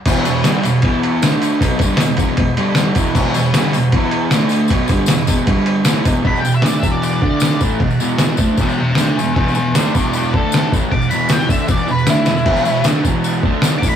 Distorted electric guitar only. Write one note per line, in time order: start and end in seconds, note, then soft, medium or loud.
0.07 0.25 E2 medium
0.07 0.25 B2 loud
0.07 0.26 E3 loud
0.26 0.41 E2 medium
0.26 0.41 B2 medium
0.44 0.63 G2 medium
0.44 0.63 D3 loud
0.44 0.64 G3 loud
0.63 0.79 E2 medium
0.63 0.79 B2 medium
0.84 1.22 E3 medium
0.84 1.22 B3 loud
0.84 1.22 E4 loud
1.22 1.60 D3 medium
1.22 1.61 A3 medium
1.22 1.61 D4 loud
1.62 1.80 B2 loud
1.62 1.81 F#3 medium
1.62 1.81 B3 loud
1.83 2.00 G2 medium
1.83 2.00 D3 medium
1.83 2.01 G3 loud
2.01 2.16 E2 medium
2.01 2.16 B2 medium
2.20 2.38 E2 medium
2.20 2.39 B2 loud
2.20 2.39 E3 loud
2.40 2.55 E2 medium
2.40 2.55 B2 medium
2.58 2.96 G2 medium
2.58 2.96 D3 loud
2.58 2.97 G3 loud
2.97 3.16 E2 medium
2.97 3.16 B2 medium
2.97 3.16 E3 medium
3.17 3.34 E2 medium
3.17 3.35 B2 loud
3.17 3.35 E3 loud
3.35 3.51 E2 medium
3.35 3.51 B2 medium
3.56 3.74 G2 loud
3.56 3.74 D3 loud
3.56 3.75 G3 loud
3.77 3.91 E2 medium
3.77 3.91 B2 medium
3.94 4.32 E3 loud
3.94 4.32 B3 loud
3.94 4.33 E4 loud
4.34 4.70 D3 medium
4.34 4.71 A3 medium
4.34 4.71 D4 medium
4.71 4.90 B2 loud
4.71 4.90 F#3 loud
4.71 4.90 B3 loud
4.90 5.09 G2 medium
4.90 5.09 D3 loud
4.90 5.10 G3 loud
5.10 5.25 E2 medium
5.10 5.26 B2 medium
5.28 5.47 E2 medium
5.28 5.47 B2 medium
5.28 5.48 E3 loud
5.48 5.86 G2 medium
5.48 5.85 D3 medium
5.48 5.86 G3 loud
5.86 6.05 A2 medium
5.86 6.05 E3 medium
5.86 6.06 A3 loud
6.04 6.22 E2 medium
6.04 6.23 B2 medium
6.04 6.24 E3 medium
6.23 6.42 E2 medium
6.23 6.42 B2 medium
6.23 6.45 E3 loud
6.43 6.60 E2 medium
6.43 6.60 B2 medium
6.63 6.83 D3 medium
6.63 6.83 A3 loud
6.63 6.83 D4 loud
6.83 7.22 E2 medium
6.83 7.21 B2 medium
6.83 7.22 E3 loud
7.22 7.61 D3 loud
7.22 7.61 A3 medium
7.22 7.62 D4 loud
7.61 7.80 A2 medium
7.61 7.81 E3 medium
7.61 7.81 A3 medium
7.81 7.97 E2 medium
7.81 7.97 B2 medium
8.01 8.39 E2 medium
8.01 8.38 B2 loud
8.01 8.38 E3 loud
8.38 8.58 D3 medium
8.38 8.58 A3 loud
8.38 8.58 D4 loud
8.57 8.77 E2 medium
8.57 8.78 B2 loud
8.57 8.78 E3 loud
8.79 8.94 E2 medium
8.79 8.94 B2 medium
8.98 9.17 D3 medium
8.98 9.17 A3 medium
8.98 9.17 D4 loud
9.19 9.34 E2 medium
9.19 9.34 B2 medium
9.36 9.55 E2 medium
9.36 9.56 B2 loud
9.36 9.56 E3 medium
9.58 9.73 E2 medium
9.58 9.73 B2 medium
9.77 9.95 D3 medium
9.77 9.96 A3 loud
9.77 9.95 D4 loud
9.95 10.33 E2 medium
9.95 10.34 B2 medium
9.95 10.34 E3 medium
10.36 10.71 D3 medium
10.36 10.71 A3 loud
10.36 10.72 D4 medium
10.71 10.91 A2 medium
10.71 10.91 E3 medium
10.71 10.91 A3 loud
10.92 11.08 E2 medium
10.92 11.08 B2 medium
11.12 11.50 E2 medium
11.12 11.48 B2 medium
11.12 11.49 E3 loud
11.49 11.68 D3 medium
11.49 11.69 A3 loud
11.49 11.69 D4 loud
11.68 11.86 E2 loud
11.68 11.87 B2 medium
11.68 11.88 E3 loud
11.87 12.03 E2 medium
11.87 12.04 B2 medium
12.06 12.26 D3 medium
12.06 12.26 A3 medium
12.06 12.26 D4 medium
12.26 12.42 E2 medium
12.26 12.42 B2 medium
12.45 12.62 E2 loud
12.45 12.63 B2 medium
12.45 12.65 E3 loud
12.64 12.80 E2 medium
12.64 12.81 B2 medium
12.84 13.03 D3 loud
12.84 13.03 A3 medium
12.84 13.04 D4 loud
13.04 13.43 E2 medium
13.04 13.43 B2 medium
13.04 13.43 E3 loud
13.43 13.81 D3 loud
13.43 13.82 A3 medium
13.43 13.82 D4 loud
13.82 13.96 A2 medium
13.82 13.96 E3 medium
13.82 13.96 A3 medium